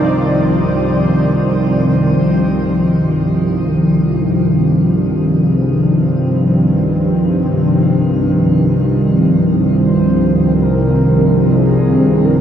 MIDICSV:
0, 0, Header, 1, 5, 480
1, 0, Start_track
1, 0, Key_signature, -3, "minor"
1, 0, Tempo, 500000
1, 11913, End_track
2, 0, Start_track
2, 0, Title_t, "Soft synth lead"
2, 0, Program_c, 0, 80
2, 0, Note_on_c, 0, 63, 97
2, 1198, Note_off_c, 0, 63, 0
2, 2128, Note_on_c, 0, 67, 95
2, 3869, Note_off_c, 0, 67, 0
2, 3914, Note_on_c, 0, 67, 98
2, 5265, Note_on_c, 0, 68, 92
2, 5279, Note_off_c, 0, 67, 0
2, 5693, Note_on_c, 0, 72, 109
2, 5707, Note_off_c, 0, 68, 0
2, 6590, Note_off_c, 0, 72, 0
2, 9314, Note_on_c, 0, 72, 106
2, 10197, Note_on_c, 0, 70, 86
2, 10211, Note_off_c, 0, 72, 0
2, 11106, Note_on_c, 0, 68, 95
2, 11121, Note_off_c, 0, 70, 0
2, 11758, Note_on_c, 0, 70, 90
2, 11773, Note_off_c, 0, 68, 0
2, 11913, Note_off_c, 0, 70, 0
2, 11913, End_track
3, 0, Start_track
3, 0, Title_t, "Synth texture"
3, 0, Program_c, 1, 99
3, 0, Note_on_c, 1, 60, 79
3, 0, Note_on_c, 1, 72, 76
3, 2112, Note_off_c, 1, 60, 0
3, 2112, Note_off_c, 1, 72, 0
3, 11913, End_track
4, 0, Start_track
4, 0, Title_t, "Analog synth pad"
4, 0, Program_c, 2, 89
4, 0, Note_on_c, 2, 51, 76
4, 0, Note_on_c, 2, 53, 59
4, 0, Note_on_c, 2, 74, 67
4, 3760, Note_on_c, 2, 60, 80
4, 4427, Note_off_c, 2, 74, 0
4, 11913, Note_off_c, 2, 51, 0
4, 11913, Note_off_c, 2, 53, 0
4, 11913, Note_off_c, 2, 60, 0
4, 11913, End_track
5, 0, Start_track
5, 0, Title_t, "Synth drone"
5, 0, Program_c, 3, 95
5, 0, Note_on_c, 3, 36, 63
5, 0, Note_on_c, 3, 43, 64
5, 2065, Note_off_c, 3, 36, 0
5, 2070, Note_off_c, 3, 43, 0
5, 2077, Note_on_c, 3, 36, 71
5, 2082, Note_on_c, 3, 43, 69
5, 11913, Note_off_c, 3, 36, 0
5, 11913, Note_off_c, 3, 43, 0
5, 11913, End_track
0, 0, End_of_file